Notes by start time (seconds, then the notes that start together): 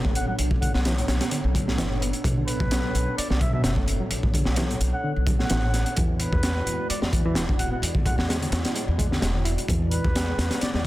Already playing: F#1 B3 D4 A4 C#5
0.05 A3, kick
0.15 F#5, closed hi-hat
0.28 F#3 F#5
0.39 B1, closed hi-hat
0.51 A2, kick
0.62 D3 F#5, kick, closed hi-hat
0.74 B1 F#5, snare
0.85 E3, snare, closed hi-hat
0.97 A2, closed hi-hat
1.08 B1, snare, closed hi-hat
1.21 snare, closed hi-hat
1.31 D3, closed hi-hat
1.44 B1
1.55 D3, kick, closed hi-hat
1.67 A2, snare
1.78 F#1 E3, snare, closed hi-hat
1.90 A2
2.01 B3, closed hi-hat
2.13 closed hi-hat
2.24 B1 B2, kick, closed hi-hat
2.38 D3
2.47 B4, closed hi-hat
2.60 B1, kick
2.71 snare, closed hi-hat
2.95 B1, closed hi-hat
3.17 D5, muted upright bass stroke, closed hi-hat
3.30 B1 D5, snare
3.41 B2 E5, kick, closed hi-hat
3.53 B2 E5
3.64 F#1 B2 E5, snare, closed hi-hat
3.76 A3, kick
3.88 closed hi-hat
4.00 F#3
4.11 B1, closed hi-hat
4.23 A2, kick
4.34 D3, kick, closed hi-hat
4.45 B1, snare
4.56 E3, snare, closed hi-hat
4.70 A2, closed hi-hat
4.81 B1, closed hi-hat
4.93 F#5
5.04 D3
5.16 B1
5.27 D3, kick, closed hi-hat
5.39 A2 F#5, snare
5.50 A1 E3, snare, closed hi-hat
5.63 A2
5.74 B3, snare, closed hi-hat
5.86 closed hi-hat
5.96 E2 E3 G#3 E4 F#4 D5, kick, closed hi-hat
6.20 B4, closed hi-hat
6.33 E2, kick
6.43 snare, closed hi-hat
6.66 E2, closed hi-hat
6.89 D5, muted upright bass stroke, closed hi-hat
7.02 E2 G#3 D5, snare
7.13 E3, kick, closed hi-hat
7.25 E3
7.35 E1 E3, snare, closed hi-hat
7.48 D4, kick
7.59 F#5, closed hi-hat
7.71 B3 F#5
7.82 E2, closed hi-hat
7.95 D3, kick
8.05 G#3 F#5, kick, closed hi-hat
8.18 E2 F#5, snare
8.29 G#3, snare, closed hi-hat
8.41 D3, closed hi-hat
8.52 E2, snare, closed hi-hat
8.65 snare, closed hi-hat
8.75 G#3, closed hi-hat
8.88 E2
8.98 G#3, kick, closed hi-hat
9.11 D3, snare
9.22 E1 G#3, snare, closed hi-hat
9.34 D3
9.45 E4, closed hi-hat
9.58 closed hi-hat
9.68 E2 E3 G#4, kick, closed hi-hat
9.91 B4, closed hi-hat
10.04 E2, kick
10.16 snare, closed hi-hat
10.38 E2, snare, closed hi-hat
10.51 snare, closed hi-hat
10.61 D5, muted upright bass stroke, snare, closed hi-hat
10.74 E2 G#3 D5, snare